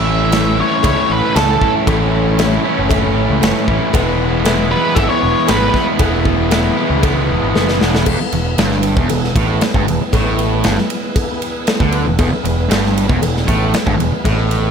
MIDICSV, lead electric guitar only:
0, 0, Header, 1, 2, 480
1, 0, Start_track
1, 0, Key_signature, 4, "major"
1, 0, Tempo, 515907
1, 1741, Time_signature, 4, 2, 24, 8
1, 13684, End_track
2, 0, Start_track
2, 0, Title_t, "Lead electric guitar"
2, 0, Program_c, 0, 29
2, 0, Note_on_c, 0, 76, 97
2, 557, Note_off_c, 0, 76, 0
2, 564, Note_on_c, 0, 73, 94
2, 782, Note_off_c, 0, 73, 0
2, 793, Note_on_c, 0, 73, 90
2, 1033, Note_off_c, 0, 73, 0
2, 1041, Note_on_c, 0, 71, 78
2, 1260, Note_off_c, 0, 71, 0
2, 1264, Note_on_c, 0, 69, 85
2, 1597, Note_off_c, 0, 69, 0
2, 4386, Note_on_c, 0, 71, 85
2, 4606, Note_on_c, 0, 76, 113
2, 4633, Note_off_c, 0, 71, 0
2, 4732, Note_off_c, 0, 76, 0
2, 4736, Note_on_c, 0, 73, 107
2, 5104, Note_on_c, 0, 71, 85
2, 5112, Note_off_c, 0, 73, 0
2, 5440, Note_off_c, 0, 71, 0
2, 13684, End_track
0, 0, End_of_file